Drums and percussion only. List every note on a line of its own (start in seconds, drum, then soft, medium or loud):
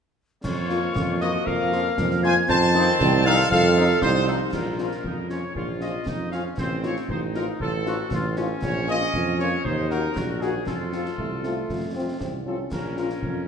0.44 concert bass drum medium
0.44 snare medium
0.44 crash medium
0.69 snare medium
0.96 concert bass drum medium
0.96 snare medium
1.21 snare medium
1.47 concert bass drum medium
1.72 snare medium
1.98 concert bass drum medium
1.98 snare medium
2.11 snare medium
2.24 snare medium
2.49 concert bass drum medium
2.49 snare medium
2.49 crash soft
2.75 snare medium
3.00 concert bass drum medium
3.00 snare loud
3.25 snare medium
3.51 concert bass drum medium
3.77 snare medium
4.02 concert bass drum medium
4.02 snare medium
4.15 snare medium
4.28 snare medium
4.53 concert bass drum medium
4.53 snare medium
4.53 crash soft
4.78 snare medium
4.92 snare soft
5.04 concert bass drum medium
5.30 snare soft
5.55 concert bass drum medium
5.81 snare medium
6.06 concert bass drum medium
6.06 snare medium
6.32 snare soft
6.58 concert bass drum medium
6.58 snare medium
6.83 snare medium
6.96 snare soft
7.09 concert bass drum medium
7.35 snare medium
7.60 concert bass drum medium
7.86 snare medium
8.11 concert bass drum medium
8.11 snare medium
8.36 snare medium
8.62 concert bass drum medium
8.62 snare medium
8.62 crash soft
8.88 snare medium
9.01 snare medium
9.13 concert bass drum medium
9.40 snare medium
9.65 concert bass drum medium
9.90 snare medium
10.16 concert bass drum medium
10.16 snare medium
10.42 snare medium
10.67 concert bass drum medium
10.67 snare medium
10.92 snare medium
11.06 snare soft
11.18 concert bass drum medium
11.44 snare soft
11.69 concert bass drum medium
11.69 snare medium
12.21 concert bass drum medium
12.21 snare medium
12.71 concert bass drum medium
12.71 snare medium
12.71 crash soft
12.97 snare medium
13.10 snare soft
13.23 concert bass drum medium